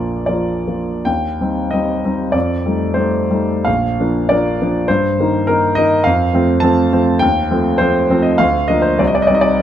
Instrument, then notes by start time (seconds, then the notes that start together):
grand piano
Already playing: A#1 F3 A#3 F4 D5
0.26 F3 A#3 F4 D5
0.67 F3 A#3 F4
1.05 D#2 G5
1.41 G3 C4 D#4
1.71 G3 C4 D#4 D#5
2.05 G3 C4 D#4
2.32 F2 D5
2.66 G3 A3 D#4
2.94 G3 A3 D#4 C5
3.31 G3 A3 D#4
3.65 A#1 F5
4.00 F3 A#3 D4
4.29 F3 A#3 D4 D5
4.62 F3 A#3 D4
4.88 G2 C5
5.19 D#3 A#3 D#4
5.47 D#3 A#3 D#4 A#4
5.75 D#3 A#3 D#4 D#5
6.04 F2 F5
6.33 F3 A3 C4
6.60 F3 A3 C4 A5
6.92 F3 A3 C4
7.19 D#2 G5
7.51 F3 A3 C4
7.78 F3 A3 C4 C5
8.10 F3 A3 C4
8.22 D#5
8.38 D2 F5
8.68 F3 A#3 D4 D#5
8.82 C5
8.99 C2 D5
9.07 D#5
9.15 D5
9.22 D#5
9.27 G3 C4 D5
9.31 D#4 D#5
9.41 D5